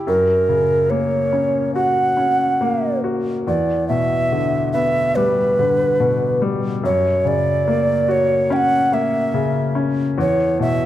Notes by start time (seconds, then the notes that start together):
0.07 F#2 A#4
0.49 C#3
0.90 A#3 C#5
1.33 C#4
1.75 F#4 F#5
2.17 C#4
2.61 A#3
3.04 F#4
3.47 E2 D5
3.88 B2 E5
4.32 D3
4.73 B3 E5
5.16 G3 B4
5.59 D3
6.00 B2
6.42 G3
6.83 F#2 C#5
7.25 C#3 D5
7.68 A#3
8.09 F#4 C#5
8.50 C#4 G5
8.56 F#5
8.92 A#3 E5
9.34 C#3
9.75 C#4
10.18 E2 C#5
10.59 B2 E5